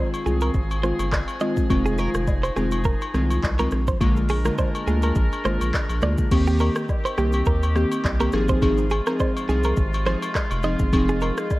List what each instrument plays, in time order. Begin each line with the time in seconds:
Already playing: synth keys D#3 G#3 C4 F4, woodwind section F3 C4 G#4
0.14 high agogo, shaker
0.26 analog synth bass C2, synth keys D#3 G#3 C4 F4, clean electric guitar G#4, shaker
0.41 clean electric guitar A#4, high agogo, shaker
0.54 analog synth bass G#1, kick, shaker
0.71 high agogo, shaker
0.83 synth keys D#3 G#3 C4 F4, clean electric guitar C5, cross-stick, shaker
0.99 analog synth bass G1, high agogo, shaker
1.12 kick, cross-stick, clap, low woodblock, shaker
1.28 high agogo, shaker
1.40 synth keys D#3 G#3 C4 F4, clean electric guitar D#5, shaker
1.57 kick, shaker
1.70 analog synth bass F1, synth keys D#3 G#3 C4 F4, woodwind section D#4, kick, high agogo, shaker
1.86 clean electric guitar G#4, shaker
1.98 clean electric guitar A#4, high agogo, shaker
2.14 analog synth bass F1, cross-stick, shaker
2.27 kick, low woodblock, shaker
2.44 clean electric guitar C5, high agogo, shaker
2.56 analog synth bass F1, synth keys D#3 G#3 C4 F4, clean electric guitar G#4, cross-stick, shaker
2.71 high agogo, shaker
2.84 clean electric guitar A#4, kick, shaker
3.01 high agogo, shaker
3.14 analog synth bass C2, synth keys D#3 G#3 C4 F4, cross-stick, shaker
3.30 high agogo, shaker
3.43 analog synth bass C2, kick, clap, low woodblock, shaker
3.59 synth keys D#3 G#3 C4 F4, clean electric guitar A#4, high agogo, shaker
3.71 analog synth bass A#1, cross-stick, shaker
3.87 clean electric guitar C5, kick, shaker
4.00 analog synth bass A#1, synth keys D3 G#3 A#3 F4, woodwind section G#3 D4 A#4, kick, high agogo, shaker
4.17 shaker
4.29 clean electric guitar G#4, open hi-hat, high agogo, shaker
4.45 synth keys D3 G#3 A#3 F4, clean electric guitar A#4, cross-stick, shaker
4.58 clean electric guitar C5, kick, low woodblock, shaker
4.75 high agogo, shaker
4.87 analog synth bass D2, synth keys D3 G#3 A#3 F4, clean electric guitar G#4, shaker
5.02 clean electric guitar A#4, high agogo, shaker
5.15 analog synth bass A#1, kick, shaker
5.32 high agogo, shaker
5.44 analog synth bass G#1, synth keys D3 G#3 A#3 F4, clean electric guitar C5, cross-stick, shaker
5.61 analog synth bass A#1, high agogo, shaker
5.74 kick, cross-stick, clap, low woodblock, shaker
5.89 analog synth bass A#1, high agogo, shaker
6.01 analog synth bass D2, synth keys D3 G#3 A#3 F4, clean electric guitar D5, cross-stick, shaker
6.18 kick, shaker
6.31 analog synth bass D#2, synth keys D#3 A#3 C4 G4, woodwind section D#3 C4 G4, kick, crash, high agogo, shaker
6.47 clean electric guitar G4, shaker
6.59 clean electric guitar A#4, high agogo, shaker
6.76 cross-stick, shaker
6.89 kick, low woodblock, shaker
7.05 clean electric guitar C5, high agogo, shaker
7.18 analog synth bass C2, synth keys D#3 A#3 C4 G4, clean electric guitar G4, cross-stick, shaker
7.32 high agogo, shaker
7.46 analog synth bass D#2, clean electric guitar A#4, kick, shaker
7.63 high agogo, shaker
7.75 synth keys D#3 A#3 C4 G4, cross-stick, shaker
7.92 high agogo, shaker
8.05 analog synth bass C2, kick, clap, low woodblock, shaker
8.20 synth keys D#3 A#3 C4 G4, clean electric guitar A#4, high agogo, shaker
8.32 analog synth bass G#1, woodwind section C3 G#3 F4, synth keys F3 C4 D#4 G#4, cross-stick, shaker
8.49 clean electric guitar C5, kick, shaker
8.62 analog synth bass G#1, synth keys F3 C4 D#4 G#4, kick, high agogo, shaker
8.78 shaker
8.90 clean electric guitar G#4, high agogo, shaker
9.07 synth keys F3 C4 D#4 G#4, clean electric guitar A#4, cross-stick, shaker
9.20 clean electric guitar C5, kick, low woodblock, shaker
9.37 high agogo, shaker
9.48 analog synth bass C2, synth keys F3 C4 D#4 G#4, clean electric guitar G#4, shaker
9.63 clean electric guitar A#4, high agogo, shaker
9.77 analog synth bass G#1, kick, shaker
9.94 high agogo, shaker
10.06 synth keys F3 C4 D#4 G#4, clean electric guitar C5, cross-stick, shaker
10.23 high agogo, shaker
10.35 kick, cross-stick, clap, low woodblock, shaker
10.51 analog synth bass F1, high agogo, shaker
10.63 synth keys F3 C4 D#4 G#4, clean electric guitar D#5, shaker
10.79 analog synth bass G1, kick, shaker
10.93 analog synth bass F1, woodwind section D#3, synth keys F3 C4 D#4 G#4, kick, high agogo, shaker
11.09 clean electric guitar G#4, shaker
11.21 clean electric guitar A#4, high agogo, shaker
11.38 cross-stick, shaker
11.50 kick, low woodblock, shaker